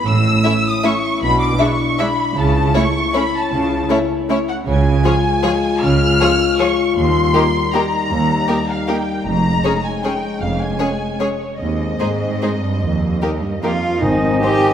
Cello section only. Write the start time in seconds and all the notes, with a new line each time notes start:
0.06 A2
1.21 B2
2.36 C#3
3.52 C#3
4.66 C#3
5.82 C#3
6.96 D#2
8.10 D#2
9.25 F2
10.40 F2
11.59 D#2
12.00 G#2
12.62 G2
12.81 F2
13.20 D#2
13.42 G2
13.63 F2 F4
14.03 D#4
14.42 G4